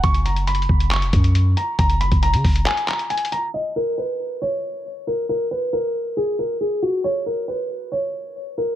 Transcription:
0.04 808-style bass F#1, grand piano C#6, kick, closed hi-hat
0.14 closed hi-hat
0.25 grand piano A#5, closed hi-hat
0.36 closed hi-hat
0.47 grand piano B5, closed hi-hat
0.55 closed hi-hat
0.62 closed hi-hat
0.69 808-style bass F#1, kick
0.80 closed hi-hat
0.91 grand piano C#6, clap, closed hi-hat
1.02 808-style bass F1, closed hi-hat
1.13 808-style bass F#2, kick, closed hi-hat
1.24 closed hi-hat
1.35 closed hi-hat
1.57 grand piano A#5, closed hi-hat
1.79 808-style bass F#1, grand piano A#5, kick, closed hi-hat
1.90 closed hi-hat
2.01 grand piano B5, closed hi-hat
2.12 808-style bass F#1, kick, closed hi-hat
2.23 grand piano A#5, closed hi-hat
2.34 808-style bass C#3, closed hi-hat
2.44 808-style bass F#1, kick, open hi-hat
2.56 closed hi-hat
2.66 grand piano G#5, clap, closed hi-hat
2.77 closed hi-hat
2.88 grand piano A#5, clap, closed hi-hat
2.99 closed hi-hat
3.10 grand piano G#5, closed hi-hat
3.17 closed hi-hat
3.25 closed hi-hat
3.32 grand piano A#5, closed hi-hat
3.54 grand piano D#5
3.76 grand piano A#4
3.98 grand piano B4
4.42 grand piano C#5
5.07 grand piano A#4
5.29 grand piano A#4
5.51 grand piano B4
5.73 grand piano A#4
6.17 grand piano G#4
6.39 grand piano A#4
6.61 grand piano G#4
6.82 grand piano F#4
7.04 grand piano C#5
7.26 grand piano A#4
7.48 grand piano B4
7.92 grand piano C#5
8.58 grand piano A#4

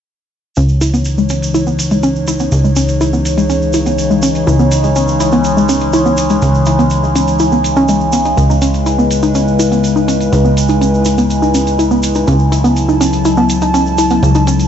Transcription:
0.56 analog synth bass C#2, synth drone C#3 G#3, analog synth pad E3 D#4 C#5, synth pluck C#4, closed hi-hat, shaker
0.69 shaker
0.81 synth pluck E4, closed hi-hat, shaker
0.94 synth pluck B3, closed hi-hat, shaker
1.05 closed hi-hat, shaker
1.18 synth pluck G#3, shaker
1.29 synth pluck C#4, closed hi-hat, shaker
1.42 closed hi-hat, shaker
1.54 synth pluck E4, closed hi-hat, shaker
1.67 synth pluck B3, shaker
1.79 closed hi-hat, shaker
1.91 synth pluck G#3, closed hi-hat, shaker
2.03 synth pluck C#4, closed hi-hat, shaker
2.16 shaker
2.27 synth pluck E4, closed hi-hat, shaker
2.39 synth pluck B3, closed hi-hat, shaker
2.52 analog synth bass C#2, closed hi-hat, shaker
2.64 synth pluck G#3, shaker
2.76 synth pluck C#4, closed hi-hat, shaker
2.88 closed hi-hat, shaker
3.01 synth pluck E4, closed hi-hat, shaker
3.13 synth pluck B3, shaker
3.25 closed hi-hat, shaker
3.38 synth pluck G#3, closed hi-hat, shaker
3.50 synth pluck C#4, closed hi-hat, shaker
3.62 shaker
3.73 synth pluck E4, closed hi-hat, shaker
3.86 synth pluck B3, closed hi-hat, shaker
3.98 closed hi-hat, shaker
4.11 synth pluck G#3, shaker
4.22 synth pluck C#4, closed hi-hat, shaker
4.35 closed hi-hat, shaker
4.47 analog synth bass C#2, synth pluck E4, closed hi-hat, shaker
4.59 synth pluck B3, shaker
4.71 closed hi-hat, shaker
4.84 synth pluck G#3, closed hi-hat, shaker
4.96 synth pluck C#4, closed hi-hat, shaker
5.08 shaker
5.20 synth pluck E4, closed hi-hat, shaker
5.32 synth pluck B3, closed hi-hat, shaker
5.44 closed hi-hat, shaker
5.57 synth pluck G#3, shaker
5.69 synth pluck C#4, closed hi-hat, shaker
5.80 closed hi-hat, shaker
5.93 synth pluck E4, closed hi-hat, shaker
6.06 synth pluck B3, shaker
6.17 closed hi-hat, shaker
6.30 synth pluck G#3, closed hi-hat, shaker
6.42 analog synth bass C#2, synth pluck C#4, closed hi-hat, shaker
6.54 shaker
6.66 synth pluck E4, closed hi-hat, shaker
6.79 synth pluck B3, closed hi-hat, shaker
6.90 closed hi-hat, shaker
7.03 synth pluck G#3, shaker
7.16 synth pluck C#4, closed hi-hat, shaker
7.27 closed hi-hat, shaker
7.39 synth pluck E4, closed hi-hat, shaker
7.52 synth pluck B3, shaker
7.64 closed hi-hat, shaker
7.76 synth pluck C#4, closed hi-hat, shaker
7.89 synth pluck G#3, closed hi-hat, shaker
8.01 shaker
8.13 synth pluck B3, closed hi-hat, shaker
8.25 synth pluck D#4, closed hi-hat, shaker
8.37 analog synth bass C#2, analog synth pad G#3 E4 B4, closed hi-hat, shaker
8.50 synth pluck D#4, shaker
8.62 synth pluck C#4, closed hi-hat, shaker
8.74 closed hi-hat, shaker
8.86 synth pluck E4, closed hi-hat, shaker
8.99 synth pluck B3, shaker
9.11 closed hi-hat, shaker
9.23 synth pluck D#4, closed hi-hat, shaker
9.35 synth pluck C#4, closed hi-hat, shaker
9.48 shaker
9.59 synth pluck E4, closed hi-hat, shaker
9.72 synth pluck B3, closed hi-hat, shaker
9.84 closed hi-hat, shaker
9.96 synth pluck D#4, shaker
10.08 synth pluck C#4, closed hi-hat, shaker
10.21 closed hi-hat, shaker
10.32 analog synth bass C#2, synth pluck E4, closed hi-hat, shaker
10.45 synth pluck B3, shaker
10.57 closed hi-hat, shaker
10.68 synth pluck D#4, closed hi-hat, shaker
10.81 synth pluck C#4, closed hi-hat, shaker
10.94 shaker
11.05 synth pluck E4, closed hi-hat, shaker
11.18 synth pluck B3, closed hi-hat, shaker
11.30 closed hi-hat, shaker
11.42 synth pluck D#4, shaker
11.54 synth pluck C#4, closed hi-hat, shaker
11.67 closed hi-hat, shaker
11.79 synth pluck E4, closed hi-hat, shaker
11.91 synth pluck B3, shaker
12.03 closed hi-hat, shaker
12.15 synth pluck D#4, closed hi-hat, shaker
12.27 analog synth bass C#2, analog synth pad F#3 A5, synth pluck C#4, closed hi-hat, shaker
12.39 shaker
12.52 synth pluck E4, closed hi-hat, shaker
12.64 synth pluck B3, closed hi-hat, shaker
12.76 closed hi-hat, shaker
12.89 synth pluck D#4, shaker
13.01 synth pluck C#4, closed hi-hat, shaker
13.13 closed hi-hat, shaker
13.25 synth pluck E4, closed hi-hat, shaker
13.37 synth pluck B3, shaker
13.50 closed hi-hat, shaker
13.62 synth pluck D#4, closed hi-hat, shaker
13.74 synth pluck C#4, closed hi-hat, shaker
13.86 shaker
13.98 synth pluck E4, closed hi-hat, shaker
14.10 synth pluck B3, closed hi-hat, shaker
14.23 analog synth bass C#2, closed hi-hat, shaker
14.35 synth pluck D#4, closed hi-hat, shaker
14.47 synth pluck C#4, closed hi-hat, shaker
14.60 closed hi-hat, shaker

